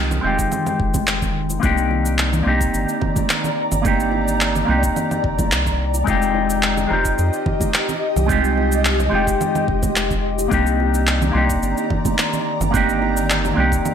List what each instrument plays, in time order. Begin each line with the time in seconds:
Already playing: analog synth bass C2, ambient pad D#3 G#3, clean electric guitar G#3 C4 D#4 F4 G4
0.11 high bongo, low conga, cabasa
0.21 analog synth bass F1, clean electric guitar G#3 C4 D#4, high conga
0.26 clean electric guitar F4 G4
0.39 kick, cabasa
0.52 low conga, cabasa
0.67 low conga, cabasa
0.80 analog synth bass F1, kick
0.94 kick, high bongo, high conga, low conga, cabasa
1.07 clap, cabasa
1.22 kick, low conga, cabasa
1.50 high bongo, cabasa
1.60 analog synth bass C2, clean electric guitar A#3 C4 D4, ambient pad D5 A#5, kick, high conga, cabasa
1.64 clean electric guitar D#4 G4
1.78 cabasa
1.91 high bongo
2.05 cabasa
2.19 clap, cabasa
2.33 high bongo, low conga, cabasa
2.43 analog synth bass C2, clean electric guitar A#3 C4 D4, high conga
2.47 clean electric guitar D#4 G4
2.61 kick, cabasa
2.74 analog synth bass G1, cabasa
2.89 cabasa
3.01 kick, high bongo, low conga
3.16 kick, high conga, low conga, cabasa
3.30 clap, cabasa
3.44 low conga, cabasa
3.72 analog synth bass G1, high bongo, low conga, cabasa
3.82 clean electric guitar A#3 C4 D4, kick, high conga, cabasa
3.86 clean electric guitar D#4 G4
4.00 cabasa
4.12 high bongo
4.28 cabasa
4.41 clap, cabasa
4.55 high bongo, low conga, cabasa
4.65 analog synth bass C2, clean electric guitar A#3 C4 D4, high conga
4.69 clean electric guitar D#4 G4
4.83 kick, cabasa
4.96 low conga, cabasa
5.11 low conga, cabasa
5.24 analog synth bass G1, kick
5.39 kick, high bongo, high conga, low conga, cabasa
5.52 analog synth bass C2, clap, cabasa
5.66 kick, low conga, cabasa
5.94 high bongo, cabasa
6.04 analog synth bass F1, clean electric guitar G#3 C4 D#4, ambient pad G4 D#5, kick, high conga, cabasa
6.08 clean electric guitar F4 G4
6.22 cabasa
6.35 high bongo
6.50 cabasa
6.63 clap, cabasa
6.77 high bongo, low conga, cabasa
6.87 analog synth bass F1, clean electric guitar G#3 C4 D#4, high conga
6.92 clean electric guitar F4 G4
7.05 kick, cabasa
7.18 analog synth bass F2, cabasa
7.33 cabasa
7.46 kick, high bongo, low conga
7.60 kick, high conga, low conga, cabasa
7.74 clap, cabasa
7.89 low conga, cabasa
8.16 analog synth bass C2, high bongo, low conga, cabasa
8.26 clean electric guitar G#3 C4 D#4, kick, high conga, cabasa
8.31 clean electric guitar F4 G4
8.44 cabasa
8.58 high bongo
8.72 cabasa
8.85 clap, cabasa
8.99 high bongo, low conga, cabasa
9.10 analog synth bass F1, clean electric guitar G#3 C4 D#4, high conga
9.14 clean electric guitar F4 G4
9.27 kick, cabasa
9.41 low conga, cabasa
9.55 low conga, cabasa
9.68 analog synth bass F1, kick
9.82 kick, high bongo, high conga, low conga, cabasa
9.96 clap, cabasa
10.11 kick, low conga, cabasa
10.39 high bongo, cabasa
10.48 analog synth bass C2, ambient pad D#3 D5 A#5, clean electric guitar A#3 C4 D4, kick, high conga, cabasa
10.53 clean electric guitar D#4 G4
10.67 cabasa
10.80 high bongo
10.94 cabasa
11.07 clap, cabasa
11.21 high bongo, low conga, cabasa
11.32 analog synth bass C2, clean electric guitar A#3 C4 D4, high conga
11.36 clean electric guitar D#4 G4
11.50 kick, cabasa
11.62 analog synth bass G1, cabasa
11.78 cabasa
11.90 kick, high bongo, low conga
12.05 kick, high conga, low conga, cabasa
12.18 clap, cabasa
12.33 low conga, cabasa
12.60 analog synth bass G1, high bongo, low conga, cabasa
12.71 clean electric guitar A#3 C4 D4, kick, high conga, cabasa
12.75 clean electric guitar D#4 G4
12.89 cabasa
13.02 high bongo
13.17 cabasa
13.30 clap, cabasa
13.45 high bongo, low conga, cabasa
13.54 analog synth bass C2, clean electric guitar A#3 C4 D4
13.58 clean electric guitar D#4 G4, high conga
13.72 kick, cabasa
13.85 low conga, cabasa